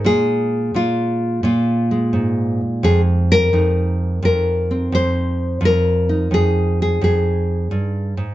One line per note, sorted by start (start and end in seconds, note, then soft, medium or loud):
0.00 1.91 G#3 soft
0.04 0.73 A#2 medium
0.04 0.75 G#4 loud
0.74 1.42 A#2 medium
0.74 1.43 F4 medium
1.43 2.83 A#2 medium
1.43 2.83 F4 medium
1.91 4.70 G#3 soft
2.13 2.60 G#2 medium
2.83 3.53 F2 medium
2.83 3.00 G#4 loud
3.32 4.23 A#4 loud
3.53 4.22 F2 medium
3.53 5.59 D#4 soft
4.22 4.91 F2 medium
4.22 4.93 A#4 medium
4.71 5.59 C4 soft
4.92 5.60 F2 medium
4.92 5.63 C5 loud
5.61 6.30 F2 medium
5.65 6.33 A#4 loud
6.09 8.35 D#4 soft
6.31 7.00 F2 medium
6.31 6.79 G#4 medium
6.82 7.03 G#4 medium
7.01 7.70 F2 medium
7.01 8.35 G#4 medium
7.71 8.17 G2 medium
8.17 8.35 G#2 medium